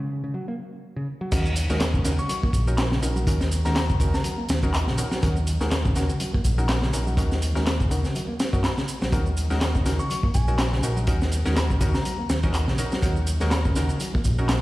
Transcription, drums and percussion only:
1.32 kick, closed hi-hat, crash, shaker
1.46 shaker
1.56 closed hi-hat, shaker
1.70 snare, shaker
1.80 snare, clap, closed hi-hat, shaker
1.94 kick, shaker
2.04 snare, closed hi-hat, shaker
2.19 shaker
2.29 closed hi-hat, shaker
2.43 kick
2.53 kick, closed hi-hat, shaker
2.67 shaker
2.78 snare, clap, closed hi-hat, shaker
2.92 snare
3.03 closed hi-hat, shaker
3.16 shaker
3.27 kick, closed hi-hat, shaker
3.41 snare, shaker
3.52 closed hi-hat, shaker
3.65 snare, shaker
3.76 snare, clap, closed hi-hat, shaker
3.90 kick, shaker
4.00 kick, closed hi-hat, shaker
4.14 snare, shaker
4.24 closed hi-hat, shaker
4.49 snare, closed hi-hat, shaker
4.63 kick, shaker
4.74 clap, closed hi-hat, shaker
4.87 snare
4.98 closed hi-hat, shaker
5.11 snare, shaker
5.22 kick, closed hi-hat, shaker
5.36 shaker
5.47 closed hi-hat, shaker
5.61 snare, shaker
5.71 snare, clap, closed hi-hat, shaker
5.85 kick, shaker
5.95 snare, closed hi-hat, shaker
6.09 shaker
6.20 closed hi-hat, shaker
6.34 kick
6.44 kick, closed hi-hat, shaker
6.58 shaker
6.69 snare, clap, closed hi-hat, shaker
6.82 snare
6.93 closed hi-hat, shaker
7.07 shaker
7.17 kick, closed hi-hat, shaker
7.31 snare, shaker
7.42 closed hi-hat, shaker
7.55 snare, shaker
7.66 snare, clap, closed hi-hat, shaker
7.80 kick, shaker
7.91 closed hi-hat, shaker
8.05 snare, shaker
8.15 closed hi-hat, shaker
8.40 snare, closed hi-hat, shaker
8.53 kick, shaker
8.64 snare, clap, closed hi-hat, shaker
8.77 snare, shaker
8.88 closed hi-hat, shaker
9.02 snare, shaker
9.12 kick, closed hi-hat, shaker
9.26 shaker
9.37 closed hi-hat, shaker
9.51 snare, shaker
9.61 snare, clap, closed hi-hat, shaker
9.75 kick, shaker
9.86 snare, closed hi-hat, shaker
9.99 shaker
10.10 closed hi-hat, shaker
10.23 kick
10.34 kick, closed hi-hat, shaker
10.48 shaker
10.58 snare, clap, closed hi-hat, shaker
10.72 snare
10.83 closed hi-hat, shaker
10.97 shaker
11.07 kick, closed hi-hat, shaker
11.21 snare, shaker
11.32 closed hi-hat, shaker
11.46 snare, shaker
11.56 snare, clap, closed hi-hat, shaker
11.70 kick, shaker
11.81 kick, closed hi-hat, shaker
11.94 snare, shaker
12.05 closed hi-hat, shaker
12.29 snare, closed hi-hat, shaker
12.43 kick, shaker
12.54 clap, closed hi-hat, shaker
12.68 snare
12.78 closed hi-hat, shaker
12.92 snare, shaker
13.03 kick, closed hi-hat, shaker
13.16 shaker
13.27 closed hi-hat, shaker
13.40 snare, shaker
13.51 snare, clap, closed hi-hat, shaker
13.65 kick, shaker
13.76 snare, closed hi-hat, shaker
13.89 shaker
14.00 closed hi-hat, shaker
14.15 kick
14.24 kick, closed hi-hat, shaker
14.38 shaker
14.49 snare, clap, closed hi-hat, shaker

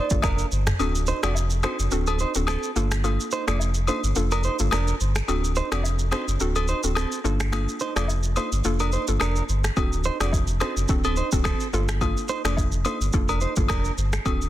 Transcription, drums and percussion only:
0.10 kick, shaker
0.22 finger snap, kick, cross-stick, high agogo, low woodblock, shaker
0.38 shaker
0.52 shaker
0.67 finger snap, cross-stick, mid tom, shaker
0.79 high agogo, shaker
0.95 shaker
1.06 shaker
1.23 finger snap, cross-stick, high agogo, shaker
1.35 low woodblock, shaker
1.50 shaker
1.63 finger snap, cross-stick, high agogo, shaker
1.79 shaker
1.91 shaker
2.07 high agogo, shaker
2.19 shaker
2.35 shaker
2.47 finger snap, cross-stick, high agogo, shaker
2.63 shaker
2.76 shaker
2.91 finger snap, cross-stick, shaker
3.04 high agogo, shaker
3.20 shaker
3.31 shaker
3.48 finger snap, cross-stick, high agogo, shaker
3.59 low woodblock, shaker
3.74 shaker
3.87 high agogo, shaker
4.04 shaker
4.16 shaker
4.31 high agogo, shaker
4.44 shaker
4.59 shaker
4.71 finger snap, cross-stick, high agogo, shaker
4.87 shaker
5.00 shaker
5.16 finger snap, cross-stick, shaker
5.28 high agogo, shaker
5.44 shaker
5.55 shaker
5.72 finger snap, cross-stick, high agogo, shaker
5.83 low woodblock, shaker
5.99 shaker
6.12 finger snap, cross-stick, high agogo, shaker
6.28 shaker
6.40 shaker
6.55 high agogo, shaker
6.68 shaker
6.83 shaker
6.95 finger snap, cross-stick, high agogo, shaker
7.12 shaker
7.25 shaker
7.40 finger snap, cross-stick, shaker
7.53 finger snap, cross-stick, high agogo, shaker
7.69 shaker
7.80 shaker
7.96 finger snap, cross-stick, high agogo, shaker
8.08 low woodblock, shaker
8.23 shaker
8.36 high agogo, shaker
8.52 shaker
8.64 shaker
8.80 high agogo, shaker
8.92 shaker
9.08 shaker
9.20 finger snap, cross-stick, high agogo, shaker
9.36 shaker
9.49 shaker
9.64 finger snap, cross-stick, shaker
9.77 kick, high agogo, shaker
9.93 shaker
10.04 shaker
10.21 finger snap, cross-stick, high agogo, shaker
10.32 kick, low woodblock, shaker
10.47 shaker
10.60 finger snap, cross-stick, high agogo, shaker
10.77 shaker
10.88 kick, shaker
11.04 high agogo, shaker
11.16 shaker
11.32 kick, shaker
11.44 finger snap, kick, cross-stick, high agogo, shaker
11.60 shaker
11.73 shaker
11.89 finger snap, cross-stick, shaker
12.01 kick, high agogo, shaker
12.17 shaker
12.28 shaker
12.45 finger snap, cross-stick, high agogo, shaker
12.56 kick, low woodblock, shaker
12.72 shaker
12.85 high agogo, shaker
13.01 shaker
13.13 kick, shaker
13.29 high agogo, shaker
13.41 shaker
13.56 kick, shaker
13.68 finger snap, kick, cross-stick, high agogo, shaker
13.85 shaker
13.98 shaker
14.13 finger snap, cross-stick, shaker
14.26 kick, high agogo, shaker
14.42 shaker

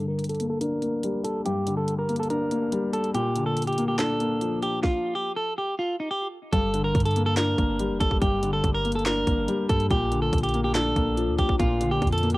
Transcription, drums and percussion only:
0.19 closed hi-hat
0.24 closed hi-hat
0.29 closed hi-hat
0.35 closed hi-hat
0.40 closed hi-hat
0.61 closed hi-hat
0.82 closed hi-hat
1.03 closed hi-hat
1.24 closed hi-hat
1.46 closed hi-hat
1.67 closed hi-hat
1.88 closed hi-hat
2.09 closed hi-hat
2.16 closed hi-hat
2.23 closed hi-hat
2.30 closed hi-hat
2.51 closed hi-hat
2.72 closed hi-hat
2.93 closed hi-hat
3.04 closed hi-hat
3.15 closed hi-hat
3.36 closed hi-hat
3.57 closed hi-hat
3.62 closed hi-hat
3.67 closed hi-hat
3.73 closed hi-hat
3.78 closed hi-hat
3.99 snare, clap, closed hi-hat
4.20 closed hi-hat
4.41 closed hi-hat
4.62 closed hi-hat
4.84 kick, snare
6.53 kick, closed hi-hat
6.74 closed hi-hat
6.95 kick, closed hi-hat
7.00 closed hi-hat
7.05 closed hi-hat
7.11 closed hi-hat
7.16 closed hi-hat
7.37 snare, clap, closed hi-hat
7.58 kick, closed hi-hat
7.79 closed hi-hat
8.00 kick, closed hi-hat
8.11 kick
8.22 kick, closed hi-hat
8.43 closed hi-hat
8.64 kick, closed hi-hat
8.85 closed hi-hat
8.92 closed hi-hat
8.99 closed hi-hat
9.06 snare, clap, closed hi-hat
9.27 kick, closed hi-hat
9.48 closed hi-hat
9.69 kick, closed hi-hat
9.80 closed hi-hat
9.91 kick, closed hi-hat
10.12 closed hi-hat
10.33 kick, closed hi-hat
10.38 closed hi-hat
10.44 closed hi-hat
10.49 closed hi-hat
10.54 closed hi-hat
10.75 snare, clap, closed hi-hat
10.96 kick, closed hi-hat
11.17 closed hi-hat
11.38 kick, closed hi-hat
11.49 kick
11.60 kick, closed hi-hat
11.81 closed hi-hat
12.02 kick, closed hi-hat
12.07 closed hi-hat
12.13 closed hi-hat
12.18 closed hi-hat
12.23 closed hi-hat
12.30 closed hi-hat

